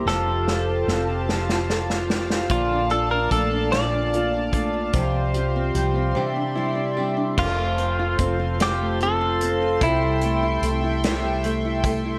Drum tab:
CC |------------|------------|------------|x-----------|
HH |------------|x-x-x-x-x-x-|x-x-x-------|--x-x-x-x-x-|
SD |o-o-o-oooooo|------o-----|------------|------o-----|
BD |------------|o---o-----o-|o-----------|o---o-------|

CC |------------|
HH |x-x-x-x-x-x-|
SD |------o-----|
BD |o---------o-|